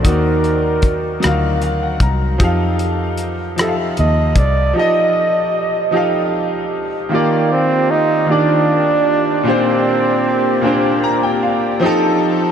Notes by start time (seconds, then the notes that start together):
Already playing: F#3 D#4 F4 F#4 A#4 C5
0.02 D#2 D#3 D#4 F#4, kick, closed hi-hat
0.07 A#4 D5
0.44 closed hi-hat
0.82 kick, closed hi-hat
1.20 F#3 D#4 F4, closed hi-hat
1.24 D2 A#4 F5, cross-stick
1.29 F#4
1.62 F5, closed hi-hat
1.83 F#5
2.00 C2 A#5, kick, closed hi-hat
2.38 F2 F3 D#4 G4, kick, closed hi-hat
2.43 A4 F5
2.79 closed hi-hat
3.17 closed hi-hat
3.56 F3 D#4 G4 A4, cross-stick, closed hi-hat
3.61 A4 E5
3.69 F5
3.97 D#2 D#5, closed hi-hat
4.36 C2 D5, kick, closed hi-hat
4.73 F3 D#4 G4 D#5
4.78 A4 D#5
5.91 F3 D#4 G4
5.95 A4 F5
7.09 D#3 A#3 F4 G4 D5
7.13 A#3 G4 D5
7.52 C4
7.91 D#4
8.26 D#3 A#3 F4
8.30 D4 G4 D5
9.43 A#2 A#3 D4
9.48 C4 G4 C5
10.61 A#2 A#3 D4
10.66 G4 C5
11.04 A#5
11.23 G5
11.43 F5
11.80 F3 C4 D#4 A4
11.84 G4 A4